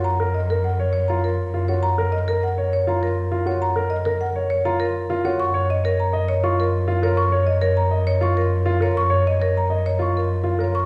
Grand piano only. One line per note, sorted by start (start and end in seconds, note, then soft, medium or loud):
0.20 0.39 A#4 medium
0.50 0.69 A#4 medium
0.80 0.98 C#5 medium
1.10 1.28 F4 medium
1.54 1.73 F4 medium
1.69 1.88 F#4 medium
1.98 2.17 A#4 medium
2.28 2.47 A#4 medium
2.58 2.77 C#5 medium
2.87 3.06 F4 medium
3.32 3.51 F4 medium
3.46 3.65 F#4 medium
3.76 3.95 A#4 medium
4.06 4.25 A#4 medium
4.36 4.55 C#5 medium
4.65 4.84 F4 medium
5.10 5.29 F4 medium
5.25 5.44 F#4 medium
5.54 5.73 C#5 medium
5.84 6.03 C#5 medium
6.13 6.33 D#5 medium
6.43 6.63 F4 medium
6.88 7.07 F4 medium
7.03 7.22 A#4 medium
7.32 7.52 C#5 medium
7.62 7.81 C#5 medium
7.91 8.11 D#5 medium
8.21 8.41 F4 medium
8.66 8.85 F4 medium
8.80 9.00 A#4 medium
9.10 9.30 C#5 medium
9.40 9.59 C#5 medium
9.70 9.89 D#5 medium
9.99 10.19 F4 medium
10.44 10.63 F4 medium
10.59 10.78 A#4 medium